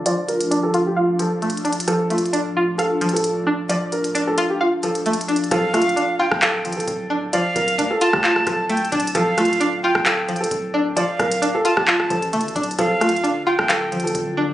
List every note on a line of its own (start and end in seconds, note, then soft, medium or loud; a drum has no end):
0.00 1.84 A2 medium
0.00 5.47 F3 medium
0.00 0.50 D4 medium
0.00 1.84 D4 medium
0.00 3.65 F4 medium
0.00 0.28 F5 medium
0.06 1.18 F3 medium
0.06 0.24 D5 medium
0.06 closed hi-hat medium
0.28 0.61 A#4 medium
0.28 closed hi-hat medium
0.41 closed hi-hat medium
0.51 1.63 D4 medium
0.51 closed hi-hat medium
0.63 0.82 A4 medium
0.74 1.88 F4 loud
0.74 closed hi-hat medium
0.86 0.95 G4 medium
0.96 1.15 F4 medium
0.96 1.87 F5 medium
1.19 1.86 F3 medium
1.19 1.84 A4 medium
1.19 closed hi-hat medium
1.42 1.88 A3 medium
1.42 closed hi-hat soft
1.50 closed hi-hat medium
1.57 closed hi-hat medium
1.65 1.87 D4 medium
1.65 closed hi-hat medium
1.73 closed hi-hat medium
1.80 closed hi-hat medium
1.88 5.48 A2 medium
1.88 3.00 F3 medium
1.88 5.48 D4 medium
1.88 2.06 A4 loud
1.88 closed hi-hat medium
2.10 3.24 A3 medium
2.10 2.74 F4 medium
2.10 closed hi-hat medium
2.18 closed hi-hat medium
2.26 closed hi-hat soft
2.33 3.45 D4 medium
2.33 closed hi-hat medium
2.57 3.70 F4 medium
2.78 3.11 A4 medium
2.78 3.92 F5 medium
2.78 closed hi-hat medium
3.01 3.68 F3 medium
3.01 closed hi-hat soft
3.09 closed hi-hat medium
3.13 3.66 A4 medium
3.13 closed hi-hat medium
3.24 closed hi-hat medium
3.47 4.14 D4 medium
3.69 4.82 F3 medium
3.69 5.49 F4 medium
3.69 3.88 D5 medium
3.69 closed hi-hat medium
3.92 4.25 A#4 medium
3.92 closed hi-hat soft
4.04 closed hi-hat medium
4.15 5.27 D4 medium
4.15 closed hi-hat medium
4.27 4.46 A4 medium
4.38 5.51 F4 loud
4.38 closed hi-hat medium
4.50 4.58 G4 medium
4.60 4.79 F4 medium
4.60 5.51 F5 medium
4.83 5.50 F3 medium
4.83 5.47 A4 medium
4.83 closed hi-hat medium
4.95 closed hi-hat medium
5.06 5.51 A3 medium
5.06 closed hi-hat medium
5.13 closed hi-hat medium
5.21 closed hi-hat medium
5.28 5.51 D4 medium
5.28 closed hi-hat medium
5.36 closed hi-hat medium
5.44 closed hi-hat soft
5.51 5.95 D1 loud
5.51 6.63 F3 medium
5.51 5.70 A4 loud
5.51 6.15 F5 loud
5.51 closed hi-hat medium
5.74 6.87 A3 medium
5.74 6.38 F4 medium
5.74 cross-stick medium
5.74 closed hi-hat medium
5.82 closed hi-hat medium
5.89 closed hi-hat soft
5.96 7.09 D4 medium
5.96 closed hi-hat medium
6.19 7.33 F4 loud
6.19 6.84 G5 medium
6.31 6.66 D1 loud
6.31 cross-stick loud
6.42 6.75 A4 loud
6.42 7.56 F5 medium
6.42 clap loud
6.42 closed hi-hat medium
6.65 6.78 A1 loud
6.65 7.32 F3 medium
6.65 closed hi-hat soft
6.72 closed hi-hat medium
6.77 6.87 D1 loud
6.77 7.30 A4 medium
6.77 closed hi-hat medium
6.88 7.31 D1 loud
6.88 closed hi-hat medium
7.10 7.77 D4 medium
7.33 8.45 F3 medium
7.33 7.51 D5 medium
7.33 7.97 F5 loud
7.33 closed hi-hat medium
7.56 7.80 D1 loud
7.56 7.88 A#4 medium
7.56 closed hi-hat medium
7.68 closed hi-hat medium
7.78 7.90 D2 loud
7.78 8.91 D4 medium
7.78 closed hi-hat medium
7.91 8.09 A4 medium
8.01 9.15 F4 loud
8.01 8.66 A5 loud
8.01 closed hi-hat medium
8.13 8.45 D2 loud
8.13 8.22 G4 medium
8.13 cross-stick loud
8.24 8.42 F4 medium
8.24 9.15 F5 medium
8.24 clap loud
8.36 cross-stick medium
8.46 8.90 D1 loud
8.46 9.14 F3 medium
8.46 9.11 A4 medium
8.46 cross-stick medium
8.46 closed hi-hat medium
8.69 9.15 A3 medium
8.69 8.91 G5 medium
8.69 closed hi-hat medium
8.77 closed hi-hat medium
8.85 closed hi-hat medium
8.92 9.14 D1 loud
8.92 9.15 D4 medium
8.92 9.14 A5 medium
8.92 closed hi-hat medium
9.00 closed hi-hat medium
9.07 closed hi-hat medium
9.15 9.92 D1 loud
9.15 10.27 F3 medium
9.15 9.33 A4 loud
9.15 9.79 F5 loud
9.15 closed hi-hat medium
9.37 10.51 A3 medium
9.37 10.02 F4 medium
9.37 cross-stick medium
9.37 closed hi-hat medium
9.45 closed hi-hat medium
9.53 closed hi-hat soft
9.60 10.73 D4 medium
9.60 closed hi-hat medium
9.83 10.97 F4 loud
9.83 10.47 G5 medium
9.95 10.49 D1 loud
9.95 cross-stick loud
10.05 10.38 A4 medium
10.05 11.20 F5 medium
10.05 clap loud
10.05 closed hi-hat medium
10.29 10.95 F3 medium
10.29 closed hi-hat soft
10.36 closed hi-hat medium
10.41 10.93 A4 medium
10.41 closed hi-hat medium
10.51 10.95 D1 loud
10.51 closed hi-hat medium
10.74 11.41 D4 medium
10.96 12.09 F3 medium
10.96 11.15 D5 medium
10.96 11.61 F5 loud
10.96 closed hi-hat medium
11.19 11.53 D1 loud
11.19 11.52 A#4 medium
11.19 cross-stick medium
11.19 closed hi-hat soft
11.32 closed hi-hat medium
11.42 12.54 D4 medium
11.42 closed hi-hat medium
11.55 11.73 A4 medium
11.65 12.79 F4 loud
11.65 12.29 A5 medium
11.65 closed hi-hat medium
11.77 12.09 D1 loud
11.77 11.85 G4 medium
11.77 cross-stick loud
11.88 12.06 F4 medium
11.88 12.79 F5 medium
11.88 clap loud
12.00 cross-stick medium
12.10 12.35 A1 loud
12.10 12.77 F3 medium
12.10 12.75 A4 medium
12.10 closed hi-hat medium
12.22 closed hi-hat medium
12.33 12.47 F1 loud
12.33 12.79 A3 medium
12.33 closed hi-hat medium
12.41 closed hi-hat medium
12.45 12.55 A1 loud
12.45 closed hi-hat medium
12.55 12.78 D1 loud
12.55 12.78 D4 medium
12.55 closed hi-hat medium
12.63 closed hi-hat medium
12.71 closed hi-hat medium
12.78 13.22 D1 loud
12.78 14.54 D3 medium
12.78 14.54 F3 medium
12.78 13.91 F3 medium
12.78 14.54 F4 medium
12.78 12.97 A4 loud
12.78 13.43 F5 loud
12.78 closed hi-hat medium
13.01 14.15 A3 medium
13.01 13.65 F4 medium
13.01 cross-stick medium
13.01 closed hi-hat medium
13.09 closed hi-hat medium
13.16 closed hi-hat soft
13.24 14.36 D4 medium
13.24 closed hi-hat medium
13.47 14.54 F4 loud
13.47 14.11 G5 medium
13.59 13.94 D1 loud
13.59 cross-stick loud
13.69 14.02 A4 medium
13.69 14.54 F5 medium
13.69 clap loud
13.69 closed hi-hat medium
13.92 14.06 A1 loud
13.92 14.54 F3 medium
13.92 closed hi-hat soft
14.00 closed hi-hat medium
14.04 14.14 D1 loud
14.04 14.54 A4 medium
14.04 closed hi-hat medium
14.15 14.54 D1 loud
14.15 closed hi-hat medium
14.37 14.54 D4 medium